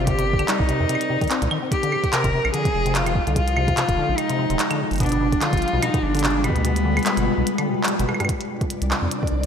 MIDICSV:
0, 0, Header, 1, 7, 480
1, 0, Start_track
1, 0, Key_signature, -3, "minor"
1, 0, Tempo, 410959
1, 84, Time_signature, 4, 2, 24, 8
1, 11052, End_track
2, 0, Start_track
2, 0, Title_t, "Synth texture"
2, 0, Program_c, 0, 99
2, 9682, Note_on_c, 0, 62, 84
2, 9682, Note_on_c, 0, 74, 83
2, 11052, Note_off_c, 0, 62, 0
2, 11052, Note_off_c, 0, 74, 0
2, 11052, End_track
3, 0, Start_track
3, 0, Title_t, "Cello"
3, 0, Program_c, 1, 42
3, 83, Note_on_c, 1, 67, 111
3, 564, Note_on_c, 1, 63, 109
3, 582, Note_off_c, 1, 67, 0
3, 1764, Note_off_c, 1, 63, 0
3, 2005, Note_on_c, 1, 67, 113
3, 2483, Note_on_c, 1, 70, 113
3, 2501, Note_off_c, 1, 67, 0
3, 2954, Note_off_c, 1, 70, 0
3, 2961, Note_on_c, 1, 68, 117
3, 3445, Note_on_c, 1, 65, 105
3, 3462, Note_off_c, 1, 68, 0
3, 3919, Note_off_c, 1, 65, 0
3, 3926, Note_on_c, 1, 65, 112
3, 4882, Note_on_c, 1, 63, 108
3, 4900, Note_off_c, 1, 65, 0
3, 5603, Note_off_c, 1, 63, 0
3, 5847, Note_on_c, 1, 62, 107
3, 6324, Note_on_c, 1, 65, 105
3, 6342, Note_off_c, 1, 62, 0
3, 6805, Note_on_c, 1, 63, 101
3, 6823, Note_off_c, 1, 65, 0
3, 7043, Note_on_c, 1, 62, 103
3, 7060, Note_off_c, 1, 63, 0
3, 7524, Note_on_c, 1, 59, 94
3, 7542, Note_off_c, 1, 62, 0
3, 9204, Note_off_c, 1, 59, 0
3, 11052, End_track
4, 0, Start_track
4, 0, Title_t, "Ambient pad"
4, 0, Program_c, 2, 92
4, 0, Note_on_c, 2, 48, 75
4, 0, Note_on_c, 2, 60, 97
4, 0, Note_on_c, 2, 70, 86
4, 0, Note_on_c, 2, 74, 81
4, 2005, Note_off_c, 2, 48, 0
4, 2005, Note_on_c, 2, 53, 84
4, 2558, Note_on_c, 2, 63, 79
4, 2561, Note_on_c, 2, 56, 82
4, 2851, Note_off_c, 2, 60, 0
4, 3099, Note_off_c, 2, 70, 0
4, 3500, Note_off_c, 2, 74, 0
4, 3655, Note_on_c, 2, 79, 79
4, 5842, Note_on_c, 2, 55, 90
4, 5843, Note_off_c, 2, 63, 0
4, 5844, Note_off_c, 2, 53, 0
4, 5984, Note_on_c, 2, 65, 74
4, 6705, Note_off_c, 2, 79, 0
4, 7576, Note_on_c, 2, 71, 78
4, 9683, Note_off_c, 2, 55, 0
4, 9683, Note_off_c, 2, 71, 0
4, 9683, Note_on_c, 2, 48, 80
4, 9684, Note_off_c, 2, 56, 0
4, 10013, Note_on_c, 2, 70, 91
4, 10072, Note_on_c, 2, 51, 89
4, 10337, Note_on_c, 2, 60, 88
4, 10686, Note_off_c, 2, 65, 0
4, 11052, Note_off_c, 2, 48, 0
4, 11052, Note_off_c, 2, 51, 0
4, 11052, Note_off_c, 2, 60, 0
4, 11052, Note_off_c, 2, 70, 0
4, 11052, End_track
5, 0, Start_track
5, 0, Title_t, "Acid bass"
5, 0, Program_c, 3, 38
5, 84, Note_on_c, 3, 48, 98
5, 171, Note_off_c, 3, 48, 0
5, 217, Note_on_c, 3, 48, 78
5, 286, Note_off_c, 3, 48, 0
5, 457, Note_on_c, 3, 50, 78
5, 526, Note_off_c, 3, 50, 0
5, 562, Note_on_c, 3, 55, 80
5, 691, Note_off_c, 3, 55, 0
5, 803, Note_on_c, 3, 48, 77
5, 931, Note_off_c, 3, 48, 0
5, 937, Note_on_c, 3, 48, 101
5, 1006, Note_off_c, 3, 48, 0
5, 1043, Note_on_c, 3, 48, 84
5, 1130, Note_off_c, 3, 48, 0
5, 1282, Note_on_c, 3, 48, 103
5, 1370, Note_off_c, 3, 48, 0
5, 1417, Note_on_c, 3, 51, 77
5, 1486, Note_off_c, 3, 51, 0
5, 1522, Note_on_c, 3, 60, 83
5, 1651, Note_off_c, 3, 60, 0
5, 1658, Note_on_c, 3, 46, 76
5, 1726, Note_off_c, 3, 46, 0
5, 1764, Note_on_c, 3, 51, 102
5, 1851, Note_off_c, 3, 51, 0
5, 1897, Note_on_c, 3, 60, 76
5, 1998, Note_off_c, 3, 60, 0
5, 2137, Note_on_c, 3, 50, 78
5, 2243, Note_on_c, 3, 48, 79
5, 2260, Note_off_c, 3, 50, 0
5, 2295, Note_off_c, 3, 48, 0
5, 2483, Note_on_c, 3, 48, 81
5, 2611, Note_off_c, 3, 48, 0
5, 2618, Note_on_c, 3, 48, 102
5, 2686, Note_off_c, 3, 48, 0
5, 2724, Note_on_c, 3, 48, 79
5, 2811, Note_off_c, 3, 48, 0
5, 2965, Note_on_c, 3, 50, 83
5, 3099, Note_on_c, 3, 48, 80
5, 3117, Note_off_c, 3, 50, 0
5, 3139, Note_off_c, 3, 48, 0
5, 3338, Note_on_c, 3, 48, 79
5, 3436, Note_off_c, 3, 48, 0
5, 3443, Note_on_c, 3, 48, 102
5, 3530, Note_off_c, 3, 48, 0
5, 3578, Note_on_c, 3, 48, 74
5, 3646, Note_off_c, 3, 48, 0
5, 3817, Note_on_c, 3, 50, 77
5, 3923, Note_on_c, 3, 48, 81
5, 3940, Note_off_c, 3, 50, 0
5, 3975, Note_off_c, 3, 48, 0
5, 4164, Note_on_c, 3, 48, 76
5, 4291, Note_off_c, 3, 48, 0
5, 4298, Note_on_c, 3, 48, 104
5, 4366, Note_off_c, 3, 48, 0
5, 4403, Note_on_c, 3, 48, 81
5, 4490, Note_off_c, 3, 48, 0
5, 4643, Note_on_c, 3, 50, 76
5, 4776, Note_on_c, 3, 48, 77
5, 4794, Note_off_c, 3, 50, 0
5, 4818, Note_off_c, 3, 48, 0
5, 5018, Note_on_c, 3, 48, 76
5, 5115, Note_off_c, 3, 48, 0
5, 5122, Note_on_c, 3, 48, 102
5, 5210, Note_off_c, 3, 48, 0
5, 5257, Note_on_c, 3, 48, 77
5, 5326, Note_off_c, 3, 48, 0
5, 5497, Note_on_c, 3, 50, 77
5, 5602, Note_on_c, 3, 48, 76
5, 5619, Note_off_c, 3, 50, 0
5, 5655, Note_off_c, 3, 48, 0
5, 5842, Note_on_c, 3, 47, 81
5, 5970, Note_off_c, 3, 47, 0
5, 5976, Note_on_c, 3, 47, 104
5, 6045, Note_off_c, 3, 47, 0
5, 6081, Note_on_c, 3, 47, 78
5, 6169, Note_off_c, 3, 47, 0
5, 6320, Note_on_c, 3, 50, 82
5, 6455, Note_on_c, 3, 47, 78
5, 6472, Note_off_c, 3, 50, 0
5, 6497, Note_off_c, 3, 47, 0
5, 6696, Note_on_c, 3, 47, 76
5, 6794, Note_off_c, 3, 47, 0
5, 6801, Note_on_c, 3, 47, 101
5, 6889, Note_off_c, 3, 47, 0
5, 6935, Note_on_c, 3, 47, 78
5, 7005, Note_off_c, 3, 47, 0
5, 7175, Note_on_c, 3, 50, 80
5, 7280, Note_on_c, 3, 47, 83
5, 7298, Note_off_c, 3, 50, 0
5, 7334, Note_off_c, 3, 47, 0
5, 7520, Note_on_c, 3, 47, 77
5, 7646, Note_off_c, 3, 47, 0
5, 7653, Note_on_c, 3, 47, 102
5, 7724, Note_off_c, 3, 47, 0
5, 7759, Note_on_c, 3, 47, 82
5, 7848, Note_off_c, 3, 47, 0
5, 8000, Note_on_c, 3, 50, 78
5, 8134, Note_on_c, 3, 47, 79
5, 8152, Note_off_c, 3, 50, 0
5, 8177, Note_off_c, 3, 47, 0
5, 8375, Note_on_c, 3, 47, 77
5, 8474, Note_off_c, 3, 47, 0
5, 8481, Note_on_c, 3, 47, 107
5, 8569, Note_off_c, 3, 47, 0
5, 8615, Note_on_c, 3, 47, 77
5, 8685, Note_off_c, 3, 47, 0
5, 8856, Note_on_c, 3, 50, 80
5, 8964, Note_on_c, 3, 47, 77
5, 8982, Note_off_c, 3, 50, 0
5, 9051, Note_off_c, 3, 47, 0
5, 9204, Note_on_c, 3, 55, 101
5, 9291, Note_off_c, 3, 55, 0
5, 9338, Note_on_c, 3, 47, 77
5, 9436, Note_off_c, 3, 47, 0
5, 9443, Note_on_c, 3, 47, 77
5, 9495, Note_off_c, 3, 47, 0
5, 9577, Note_on_c, 3, 43, 99
5, 9678, Note_off_c, 3, 43, 0
5, 11052, End_track
6, 0, Start_track
6, 0, Title_t, "Analog synth bass"
6, 0, Program_c, 4, 38
6, 0, Note_on_c, 4, 31, 83
6, 495, Note_off_c, 4, 31, 0
6, 698, Note_on_c, 4, 36, 97
6, 831, Note_off_c, 4, 36, 0
6, 938, Note_on_c, 4, 41, 82
6, 1002, Note_off_c, 4, 41, 0
6, 1659, Note_on_c, 4, 36, 100
6, 1722, Note_off_c, 4, 36, 0
6, 2619, Note_on_c, 4, 29, 99
6, 2751, Note_off_c, 4, 29, 0
6, 2860, Note_on_c, 4, 34, 80
6, 2923, Note_off_c, 4, 34, 0
6, 3204, Note_on_c, 4, 29, 83
6, 3733, Note_off_c, 4, 29, 0
6, 3817, Note_on_c, 4, 36, 86
6, 4336, Note_off_c, 4, 36, 0
6, 4538, Note_on_c, 4, 29, 100
6, 4671, Note_off_c, 4, 29, 0
6, 4777, Note_on_c, 4, 34, 82
6, 4841, Note_off_c, 4, 34, 0
6, 5257, Note_on_c, 4, 27, 100
6, 5321, Note_off_c, 4, 27, 0
6, 5737, Note_on_c, 4, 31, 100
6, 6256, Note_off_c, 4, 31, 0
6, 6458, Note_on_c, 4, 31, 99
6, 6591, Note_off_c, 4, 31, 0
6, 6696, Note_on_c, 4, 35, 81
6, 6761, Note_off_c, 4, 35, 0
6, 7042, Note_on_c, 4, 31, 82
6, 7572, Note_off_c, 4, 31, 0
6, 7658, Note_on_c, 4, 38, 84
6, 8176, Note_off_c, 4, 38, 0
6, 8376, Note_on_c, 4, 31, 99
6, 8510, Note_off_c, 4, 31, 0
6, 8616, Note_on_c, 4, 35, 82
6, 8681, Note_off_c, 4, 35, 0
6, 9337, Note_on_c, 4, 31, 101
6, 9401, Note_off_c, 4, 31, 0
6, 10298, Note_on_c, 4, 36, 95
6, 10431, Note_off_c, 4, 36, 0
6, 10537, Note_on_c, 4, 41, 81
6, 10601, Note_off_c, 4, 41, 0
6, 10884, Note_on_c, 4, 36, 82
6, 11052, Note_off_c, 4, 36, 0
6, 11052, End_track
7, 0, Start_track
7, 0, Title_t, "Drums"
7, 83, Note_on_c, 9, 36, 111
7, 84, Note_on_c, 9, 42, 75
7, 200, Note_off_c, 9, 36, 0
7, 200, Note_off_c, 9, 42, 0
7, 218, Note_on_c, 9, 42, 53
7, 335, Note_off_c, 9, 42, 0
7, 390, Note_on_c, 9, 36, 115
7, 458, Note_on_c, 9, 42, 36
7, 458, Note_on_c, 9, 75, 75
7, 507, Note_off_c, 9, 36, 0
7, 563, Note_off_c, 9, 42, 0
7, 563, Note_on_c, 9, 39, 124
7, 563, Note_on_c, 9, 42, 78
7, 575, Note_off_c, 9, 75, 0
7, 680, Note_off_c, 9, 39, 0
7, 680, Note_off_c, 9, 42, 0
7, 698, Note_on_c, 9, 36, 126
7, 804, Note_on_c, 9, 42, 51
7, 815, Note_off_c, 9, 36, 0
7, 921, Note_off_c, 9, 42, 0
7, 1044, Note_on_c, 9, 42, 77
7, 1111, Note_on_c, 9, 75, 50
7, 1161, Note_off_c, 9, 42, 0
7, 1179, Note_on_c, 9, 42, 52
7, 1227, Note_off_c, 9, 75, 0
7, 1295, Note_off_c, 9, 42, 0
7, 1418, Note_on_c, 9, 36, 88
7, 1419, Note_on_c, 9, 42, 35
7, 1445, Note_off_c, 9, 42, 0
7, 1445, Note_on_c, 9, 42, 29
7, 1490, Note_off_c, 9, 42, 0
7, 1490, Note_on_c, 9, 42, 23
7, 1525, Note_off_c, 9, 42, 0
7, 1525, Note_on_c, 9, 39, 127
7, 1525, Note_on_c, 9, 42, 81
7, 1535, Note_off_c, 9, 36, 0
7, 1642, Note_off_c, 9, 39, 0
7, 1642, Note_off_c, 9, 42, 0
7, 1659, Note_on_c, 9, 42, 52
7, 1766, Note_on_c, 9, 75, 76
7, 1776, Note_off_c, 9, 42, 0
7, 1882, Note_off_c, 9, 75, 0
7, 2004, Note_on_c, 9, 36, 106
7, 2006, Note_on_c, 9, 42, 75
7, 2121, Note_off_c, 9, 36, 0
7, 2123, Note_off_c, 9, 42, 0
7, 2140, Note_on_c, 9, 42, 51
7, 2246, Note_on_c, 9, 75, 52
7, 2257, Note_off_c, 9, 42, 0
7, 2363, Note_off_c, 9, 75, 0
7, 2379, Note_on_c, 9, 36, 101
7, 2379, Note_on_c, 9, 42, 36
7, 2485, Note_off_c, 9, 42, 0
7, 2485, Note_on_c, 9, 39, 119
7, 2485, Note_on_c, 9, 42, 77
7, 2495, Note_off_c, 9, 36, 0
7, 2601, Note_off_c, 9, 39, 0
7, 2601, Note_off_c, 9, 42, 0
7, 2618, Note_on_c, 9, 36, 124
7, 2619, Note_on_c, 9, 42, 50
7, 2735, Note_off_c, 9, 36, 0
7, 2736, Note_off_c, 9, 42, 0
7, 2860, Note_on_c, 9, 75, 78
7, 2964, Note_on_c, 9, 42, 75
7, 2977, Note_off_c, 9, 75, 0
7, 3081, Note_off_c, 9, 42, 0
7, 3098, Note_on_c, 9, 36, 123
7, 3099, Note_on_c, 9, 42, 51
7, 3215, Note_off_c, 9, 36, 0
7, 3216, Note_off_c, 9, 42, 0
7, 3339, Note_on_c, 9, 42, 35
7, 3444, Note_off_c, 9, 42, 0
7, 3444, Note_on_c, 9, 39, 121
7, 3444, Note_on_c, 9, 42, 76
7, 3561, Note_off_c, 9, 39, 0
7, 3561, Note_off_c, 9, 42, 0
7, 3580, Note_on_c, 9, 42, 51
7, 3580, Note_on_c, 9, 75, 51
7, 3684, Note_on_c, 9, 36, 123
7, 3696, Note_off_c, 9, 42, 0
7, 3696, Note_off_c, 9, 75, 0
7, 3801, Note_off_c, 9, 36, 0
7, 3819, Note_on_c, 9, 42, 37
7, 3924, Note_on_c, 9, 36, 102
7, 3926, Note_off_c, 9, 42, 0
7, 3926, Note_on_c, 9, 42, 75
7, 4041, Note_off_c, 9, 36, 0
7, 4042, Note_off_c, 9, 42, 0
7, 4060, Note_on_c, 9, 42, 51
7, 4165, Note_on_c, 9, 75, 79
7, 4177, Note_off_c, 9, 42, 0
7, 4281, Note_off_c, 9, 75, 0
7, 4298, Note_on_c, 9, 36, 98
7, 4299, Note_on_c, 9, 42, 36
7, 4405, Note_off_c, 9, 42, 0
7, 4405, Note_on_c, 9, 39, 116
7, 4405, Note_on_c, 9, 42, 73
7, 4415, Note_off_c, 9, 36, 0
7, 4521, Note_off_c, 9, 39, 0
7, 4521, Note_off_c, 9, 42, 0
7, 4538, Note_on_c, 9, 36, 120
7, 4539, Note_on_c, 9, 42, 51
7, 4655, Note_off_c, 9, 36, 0
7, 4656, Note_off_c, 9, 42, 0
7, 4883, Note_on_c, 9, 42, 77
7, 4883, Note_on_c, 9, 75, 53
7, 5000, Note_off_c, 9, 42, 0
7, 5000, Note_off_c, 9, 75, 0
7, 5017, Note_on_c, 9, 42, 51
7, 5134, Note_off_c, 9, 42, 0
7, 5257, Note_on_c, 9, 42, 35
7, 5363, Note_off_c, 9, 42, 0
7, 5363, Note_on_c, 9, 39, 122
7, 5363, Note_on_c, 9, 42, 78
7, 5480, Note_off_c, 9, 39, 0
7, 5480, Note_off_c, 9, 42, 0
7, 5497, Note_on_c, 9, 42, 51
7, 5497, Note_on_c, 9, 75, 80
7, 5614, Note_off_c, 9, 42, 0
7, 5614, Note_off_c, 9, 75, 0
7, 5737, Note_on_c, 9, 42, 16
7, 5764, Note_off_c, 9, 42, 0
7, 5764, Note_on_c, 9, 42, 18
7, 5790, Note_off_c, 9, 42, 0
7, 5790, Note_on_c, 9, 42, 21
7, 5817, Note_off_c, 9, 42, 0
7, 5817, Note_on_c, 9, 42, 23
7, 5843, Note_on_c, 9, 36, 101
7, 5844, Note_off_c, 9, 42, 0
7, 5844, Note_on_c, 9, 42, 75
7, 5878, Note_off_c, 9, 42, 0
7, 5878, Note_on_c, 9, 42, 27
7, 5912, Note_off_c, 9, 42, 0
7, 5912, Note_on_c, 9, 42, 29
7, 5945, Note_off_c, 9, 42, 0
7, 5945, Note_on_c, 9, 42, 32
7, 5960, Note_off_c, 9, 36, 0
7, 5979, Note_off_c, 9, 42, 0
7, 5979, Note_on_c, 9, 42, 53
7, 6096, Note_off_c, 9, 42, 0
7, 6218, Note_on_c, 9, 36, 99
7, 6219, Note_on_c, 9, 42, 37
7, 6324, Note_off_c, 9, 42, 0
7, 6324, Note_on_c, 9, 39, 114
7, 6324, Note_on_c, 9, 42, 78
7, 6335, Note_off_c, 9, 36, 0
7, 6441, Note_off_c, 9, 39, 0
7, 6441, Note_off_c, 9, 42, 0
7, 6458, Note_on_c, 9, 36, 119
7, 6459, Note_on_c, 9, 42, 49
7, 6512, Note_off_c, 9, 42, 0
7, 6512, Note_on_c, 9, 42, 39
7, 6564, Note_off_c, 9, 42, 0
7, 6564, Note_on_c, 9, 42, 33
7, 6574, Note_off_c, 9, 36, 0
7, 6632, Note_off_c, 9, 42, 0
7, 6632, Note_on_c, 9, 42, 27
7, 6749, Note_off_c, 9, 42, 0
7, 6804, Note_on_c, 9, 42, 79
7, 6804, Note_on_c, 9, 75, 83
7, 6921, Note_off_c, 9, 42, 0
7, 6921, Note_off_c, 9, 75, 0
7, 6938, Note_on_c, 9, 36, 112
7, 6939, Note_on_c, 9, 42, 53
7, 7054, Note_off_c, 9, 36, 0
7, 7056, Note_off_c, 9, 42, 0
7, 7179, Note_on_c, 9, 42, 35
7, 7204, Note_off_c, 9, 42, 0
7, 7204, Note_on_c, 9, 42, 28
7, 7231, Note_off_c, 9, 42, 0
7, 7231, Note_on_c, 9, 42, 78
7, 7284, Note_on_c, 9, 39, 118
7, 7329, Note_off_c, 9, 42, 0
7, 7329, Note_on_c, 9, 42, 16
7, 7364, Note_off_c, 9, 42, 0
7, 7364, Note_on_c, 9, 42, 13
7, 7401, Note_off_c, 9, 39, 0
7, 7480, Note_off_c, 9, 42, 0
7, 7525, Note_on_c, 9, 42, 53
7, 7525, Note_on_c, 9, 75, 55
7, 7591, Note_on_c, 9, 36, 114
7, 7642, Note_off_c, 9, 42, 0
7, 7642, Note_off_c, 9, 75, 0
7, 7658, Note_on_c, 9, 42, 37
7, 7708, Note_off_c, 9, 36, 0
7, 7763, Note_off_c, 9, 42, 0
7, 7763, Note_on_c, 9, 42, 80
7, 7880, Note_off_c, 9, 42, 0
7, 7899, Note_on_c, 9, 42, 55
7, 8016, Note_off_c, 9, 42, 0
7, 8139, Note_on_c, 9, 42, 17
7, 8139, Note_on_c, 9, 75, 86
7, 8165, Note_off_c, 9, 42, 0
7, 8165, Note_on_c, 9, 42, 23
7, 8208, Note_off_c, 9, 42, 0
7, 8208, Note_on_c, 9, 42, 30
7, 8244, Note_off_c, 9, 42, 0
7, 8244, Note_on_c, 9, 39, 117
7, 8244, Note_on_c, 9, 42, 80
7, 8256, Note_off_c, 9, 75, 0
7, 8361, Note_off_c, 9, 39, 0
7, 8361, Note_off_c, 9, 42, 0
7, 8378, Note_on_c, 9, 42, 54
7, 8495, Note_off_c, 9, 42, 0
7, 8723, Note_on_c, 9, 42, 81
7, 8840, Note_off_c, 9, 42, 0
7, 8858, Note_on_c, 9, 42, 56
7, 8858, Note_on_c, 9, 75, 56
7, 8975, Note_off_c, 9, 42, 0
7, 8975, Note_off_c, 9, 75, 0
7, 9151, Note_on_c, 9, 39, 117
7, 9204, Note_on_c, 9, 42, 84
7, 9267, Note_off_c, 9, 39, 0
7, 9321, Note_off_c, 9, 42, 0
7, 9338, Note_on_c, 9, 42, 55
7, 9446, Note_on_c, 9, 37, 64
7, 9446, Note_on_c, 9, 75, 38
7, 9455, Note_off_c, 9, 42, 0
7, 9513, Note_off_c, 9, 75, 0
7, 9513, Note_on_c, 9, 75, 50
7, 9562, Note_off_c, 9, 37, 0
7, 9579, Note_off_c, 9, 75, 0
7, 9579, Note_on_c, 9, 37, 76
7, 9579, Note_on_c, 9, 42, 39
7, 9579, Note_on_c, 9, 75, 60
7, 9632, Note_off_c, 9, 75, 0
7, 9632, Note_on_c, 9, 75, 70
7, 9684, Note_off_c, 9, 42, 0
7, 9684, Note_on_c, 9, 36, 97
7, 9684, Note_on_c, 9, 42, 79
7, 9696, Note_off_c, 9, 37, 0
7, 9749, Note_off_c, 9, 75, 0
7, 9801, Note_off_c, 9, 36, 0
7, 9801, Note_off_c, 9, 42, 0
7, 9818, Note_on_c, 9, 42, 53
7, 9935, Note_off_c, 9, 42, 0
7, 10058, Note_on_c, 9, 36, 98
7, 10060, Note_on_c, 9, 42, 37
7, 10165, Note_off_c, 9, 42, 0
7, 10165, Note_on_c, 9, 42, 77
7, 10175, Note_off_c, 9, 36, 0
7, 10282, Note_off_c, 9, 42, 0
7, 10299, Note_on_c, 9, 42, 51
7, 10405, Note_on_c, 9, 39, 109
7, 10416, Note_off_c, 9, 42, 0
7, 10522, Note_off_c, 9, 39, 0
7, 10646, Note_on_c, 9, 42, 78
7, 10762, Note_off_c, 9, 42, 0
7, 10779, Note_on_c, 9, 36, 115
7, 10832, Note_on_c, 9, 42, 52
7, 10895, Note_off_c, 9, 36, 0
7, 10949, Note_off_c, 9, 42, 0
7, 11052, End_track
0, 0, End_of_file